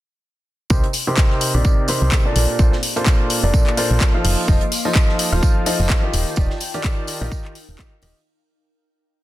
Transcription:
0.70 C2 C3 C4 D#4 G4 A#4 C5, kick, tambourine
0.84 closed hi-hat
0.93 D#4, open hi-hat, tambourine
1.07 C3 C4 D#4 G4 A#4 C5
1.17 kick, snare, clap, tambourine
1.30 G4, snare
1.41 open hi-hat, tambourine
1.54 A#1 C3 C4 D#4 G4 A#4 D5
1.65 kick, tambourine
1.88 C3 C4 D#4 G4 A#4 C5, open hi-hat, tambourine
2.02 C2
2.11 kick, snare, clap, tambourine
2.25 A#2 D4 F4 A4 A#4 D5
2.36 A#1 A#3, open hi-hat, tambourine
2.59 A#1 A#2 D4 F4 A4 A#4 C5, kick, tambourine
2.72 F5, snare
2.83 open hi-hat, tambourine
2.87 D6
2.96 A#2 D4 F4 A4 A#4 C5, closed hi-hat
3.06 C6, kick, snare, clap, tambourine
3.30 open hi-hat, tambourine
3.43 F1 A#2 D4 F4 A4 A#4 D5
3.54 kick, tambourine
3.67 clap
3.77 A#2 D4 F4 A4 A#4 C5, open hi-hat, tambourine
3.91 A#1
4.00 kick, snare, clap, tambourine
4.14 F3 D#4 F4 A4 C5 F5
4.25 F1 F4, open hi-hat
4.48 F1 F3 D#4 F4 A4 C5 D#5, kick, tambourine
4.61 C5, closed hi-hat
4.68 G5, open hi-hat, tambourine
4.73 tambourine
4.85 F3 D#4 F4 A4 C5 D#5, tambourine
4.95 kick, snare, clap, tambourine
5.09 A5, snare
5.19 open hi-hat, tambourine
5.32 D#1 F3 D#4 F4 A4 C5 F5, tambourine
5.43 kick, tambourine
5.66 F3 D#4 F4 A4 C5 D#5, open hi-hat, tambourine
5.80 F1, tambourine
5.89 kick, snare, clap, tambourine
6.03 D#3 D#4 F4 G4 A#4 D#5
6.13 D#1 D#4, open hi-hat, tambourine
6.27 F5, tambourine
6.36 D#1 D#3 D#4 F4 G4 A#4 D5, kick, tambourine
6.50 snare
6.60 A#4, open hi-hat, tambourine
6.74 D#3 D#4 F4 G4 A#4 D5, closed hi-hat, tambourine
6.84 kick, snare, clap, tambourine
7.07 open hi-hat, tambourine
7.21 A#1 D#3 D#4 F4 G4 A#4 D#5, tambourine
7.32 kick, tambourine
7.45 clap
7.55 open hi-hat, tambourine
7.68 D#1, tambourine
7.79 D#3 D#4 F4 G4 A#4 D#5, kick, snare, clap, tambourine
8.02 D#1 D#3 D#4 F4 G4 A#4 D#5, open hi-hat, tambourine
8.16 tambourine

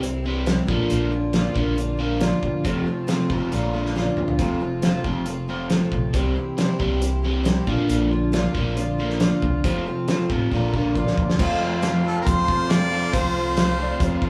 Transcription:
Already playing: C2
0.01 C3 E3 G3 C4 E4 G4, closed hi-hat
0.23 C3 E3 G3 C4 E4 G4
0.45 C3 E3 G3 C4 E4 G4, snare, closed hi-hat
0.67 A#1 A#2 D3 F3 A#3 D4 F4, kick
0.90 A#1 A#2 D3 A#3, closed hi-hat
1.11 A#2 D3 A#3 D4 F4
1.33 A#2 D3 F3 A#3 D4 F4, snare, closed hi-hat
1.55 A#1 A#2 D3 A#3 D4 F4, kick
1.76 A#2 D3 F3 A#3 D4 F4, closed hi-hat
1.98 A#2 D3 A#3 D4 F4
2.20 A#2 D3 F3 A#3 D4 F4, snare, closed hi-hat
2.42 G1 A#2 D3, kick
2.64 F1 F2 C3 F3 A3 C4 F4, kick, closed hi-hat
2.86 F2 C3 F3 A3 C4 F4
3.07 F2 C3 F3 A3 C4 F4, snare, closed hi-hat
3.29 F1 F2 C3 F3 A3 C4 F4, kick
3.51 A#1 A#2 D3 F3 A#3 D4 F4, closed hi-hat
3.73 A#2 D3 A#3 D4 F4
3.86 snare
3.95 A#2 D3 F3 A#3 D4 F4, snare
4.17 F2 A#2 D3, mid tom
4.28 floor tom
4.38 F1 F2 C3 F3 A3 C4 F4, kick, closed hi-hat
4.60 F2 C3 F3 A3 C4 F4
4.82 F2 C3 F3 A3 C4 F4, snare, closed hi-hat
5.04 F1 F2 C3 F3 A3 C4 F4, kick
5.25 F2 C3 F3 A3 C4 F4, closed hi-hat
5.48 F2 C3 F3 A3 C4 F4
5.69 F2 C3 F3 A3 C4 F4, snare, closed hi-hat
5.92 A#1 F2 C3, kick
6.13 C2 C3 E3 G3 C4 E4 G4, kick, closed hi-hat
6.36 C3 E3 C4 E4 G4
6.58 C3 E3 G3 C4 E4 G4, snare, closed hi-hat
6.79 C2 C3 E3 G3 C4 E4 G4, kick
7.00 C3 E3 G3 C4 E4 G4, closed hi-hat
7.22 C3 E3 G3 C4 E4 G4
7.44 C3 E3 G3 C4 E4 G4, snare, closed hi-hat
7.67 A#1 A#2 D3 F3 A#3 D4 F4, kick
7.89 A#1 A#2 D3 A#3, closed hi-hat
8.11 A#2 D3 A#3 D4 F4
8.32 A#2 D3 F3 A#3 D4 F4, snare, closed hi-hat
8.54 A#1 A#2 D3 A#3 D4 F4, kick
8.76 A#2 D3 F3 A#3 D4 F4, closed hi-hat
8.98 A#2 D3 A#3 D4 F4
9.10 snare
9.20 A#2 D3 F3 A#3 D4 F4, snare, closed hi-hat
9.42 C2 A#2 D3, kick
9.64 F1 F2 C3 F3 A3 C4 F4, kick, closed hi-hat
9.86 F2 C3 F3 A3 C4 F4
10.08 F2 C3 F3 A3 C4 F4, snare, closed hi-hat
10.29 A1 F2 C3 F3 A3 C4 F4, kick
10.52 A#1 A#2 D3 F3 A#3 D4 F4, kick
10.74 A#2 D3 A#3 D4 F4, kick
10.95 A#2 D3 F3 A#3 D4 F4, kick
11.07 snare
11.17 F2 A#2 D3, kick
11.30 snare
11.39 F2 C3 F3 A3 C4 F4 A4 F5 C6, kick, crash
11.60 F3 A3 C4 F4
11.81 F3 A3 C4 F4, snare, closed hi-hat
12.04 F3 A3 C4 F4 A4
12.21 A#4
12.27 F2 C5, kick, closed hi-hat
12.48 F2 F3 A3 C4 F4, kick
12.70 F3 A3 C4 F4 D5, snare, closed hi-hat
12.91 F3 A3 C4 F4
13.13 C2 F2 C3 F3 A3 C4 F4 C5, kick, closed hi-hat
13.35 F3 A3 C4 F4
13.57 F3 A3 C4 F4, snare, closed hi-hat
13.78 F3 A3 C4 F4 D5
14.00 F2 C5, kick, closed hi-hat
14.22 F3 A3 C4 F4, kick

